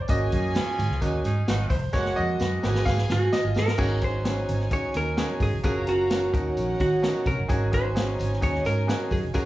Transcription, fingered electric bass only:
0.09 0.26 G#1 loud
0.33 0.58 F#2 medium
0.78 0.87 G#2 loud
0.90 0.98 C#2 medium
1.02 1.19 D#2 loud
1.25 1.42 G#2 loud
1.48 1.65 G#1 loud
1.70 1.88 F1 medium
1.94 2.11 F#1 loud
2.19 2.35 F2 medium
2.41 2.58 F#2 loud
2.64 2.81 G#1 loud
2.87 3.04 G#2 loud
3.10 3.27 G#2 loud
3.33 muted fingered electric bass stroke soft
3.45 3.53 G#1 medium
3.56 3.73 G#2 loud
3.79 4.45 G#1 medium
4.49 4.66 G#1 medium
4.84 muted fingered electric bass stroke soft
4.95 5.21 D#2 medium
5.41 5.49 G#2 medium
5.53 5.61 F1 medium
5.64 6.30 F#1 medium
6.34 6.51 D#2 loud
6.57 6.74 A#1 medium
6.80 7.06 D#3 medium
7.26 7.35 C3 medium
7.39 7.47 F#1 medium
7.50 8.16 G#1 loud
8.20 8.37 G#1 medium
8.43 8.60 D#2 loud
8.66 8.91 G#2 loud
9.11 9.20 F#2 medium
9.24 9.32 F1 medium
9.35 9.45 F#1 loud

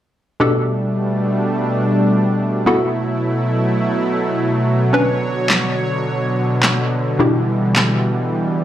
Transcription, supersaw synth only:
0.41 2.65 B2 medium
0.41 2.65 G3 medium
0.41 2.65 A3 medium
0.41 2.65 D4 medium
2.67 4.91 B2 medium
2.67 7.16 F#3 medium
2.67 4.91 A3 medium
2.67 4.91 E4 medium
4.93 8.64 D3 medium
4.93 7.18 C#5 medium
7.20 8.64 E3 medium
7.20 8.64 G3 medium

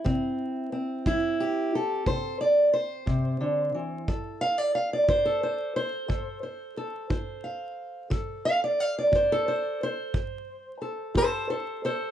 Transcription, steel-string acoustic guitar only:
0.00 1.05 E4 soft
0.00 0.72 E5 loud
0.05 0.65 C3 medium
0.05 0.72 C4 soft
0.72 4.08 C4 soft
1.07 1.67 G3 medium
1.07 1.73 E4 medium
1.40 2.07 G4 medium
1.75 2.75 A4 medium
2.06 2.67 C3 medium
2.06 2.40 C5 medium
2.41 2.73 D5 medium
2.73 4.08 C5 medium
3.06 3.40 C3 medium
3.41 3.74 D3 medium
3.74 4.08 E3 medium
4.08 4.68 F3 medium
4.08 5.25 A4 soft
4.41 4.58 F5 loud
4.58 4.75 D5 medium
4.75 4.92 F5 medium
4.93 5.77 D5 medium
5.08 5.69 F4 medium
5.08 5.42 C5 medium
5.25 6.08 A4 medium
5.43 5.75 C5 medium
5.76 6.42 C5 medium
6.08 6.70 F3 medium
6.08 6.76 A4 soft
6.43 7.10 C5 soft
6.77 8.08 A4 soft
7.10 7.71 F4 medium
7.10 8.67 C5 soft
7.44 8.07 F5 medium
8.10 8.71 F3 medium
8.10 9.29 A4 soft
8.45 8.62 F5 loud
8.64 8.80 D5 medium
8.80 8.96 F5 medium
8.99 9.81 D5 medium
9.12 9.73 F4 medium
9.12 9.47 C5 medium
9.32 10.15 A4 medium
9.48 9.81 C5 medium
9.83 11.16 C5 loud
10.14 10.74 F3 medium
10.82 11.15 A4 soft
11.14 11.75 F4 medium
11.14 11.49 A4 medium
11.14 11.49 C5 loud
11.50 11.83 A4 medium
11.50 11.83 C5 medium
11.85 12.11 A4 medium
11.85 12.11 C5 medium

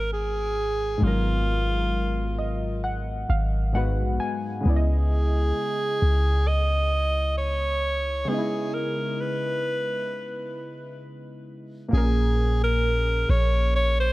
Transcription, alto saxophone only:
0.13 1.05 G#4 loud
1.04 2.85 F4 medium
4.67 6.49 G#4 loud
6.47 7.37 D#5 loud
7.37 8.30 C#5 loud
8.28 8.75 G#4 medium
8.74 9.22 A#4 medium
9.20 11.02 B4 medium
11.94 12.59 G#4 loud
12.64 13.32 A#4 loud
13.30 13.75 C#5 loud
13.75 13.98 C#5 loud
14.00 14.13 C5 loud

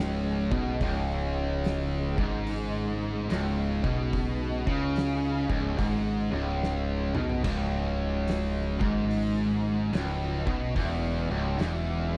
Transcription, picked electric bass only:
0.00 0.48 C#1 medium
0.52 0.79 B1 loud
0.81 2.13 C#1 loud
2.18 3.26 G#1 loud
3.31 3.80 C#1 loud
3.84 4.62 B1 loud
4.67 5.46 C#2 medium
5.50 5.77 C#1 loud
5.79 6.28 G#1 loud
6.32 7.11 C#1 loud
7.14 7.42 B1 loud
7.44 8.77 C#1 loud
8.81 9.89 G#1 loud
9.93 10.43 C#1 loud
10.47 10.74 B1 medium
10.76 11.26 E1 medium
11.29 11.57 C#1 medium
11.59 12.17 E1 loud

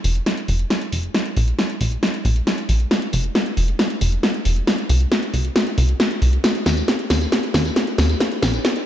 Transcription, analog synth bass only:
0.04 0.21 F1 medium
0.48 0.65 F1 medium
0.92 1.09 F1 medium
1.37 1.53 A#1 loud
1.81 1.97 A#1 medium
2.25 2.41 A#1 medium
2.69 2.86 A#1 medium
3.13 3.30 F1 loud
3.57 3.74 F1 medium
4.01 4.18 F1 loud
4.45 4.62 F1 medium
4.90 5.06 C2 loud
5.34 5.50 C2 medium
5.78 5.94 C2 loud
6.22 6.38 C2 medium
6.66 6.83 D#2 loud
7.10 7.27 D#2 medium
7.54 7.71 D#2 loud
7.98 8.15 D#2 medium
8.42 8.59 A#1 loud

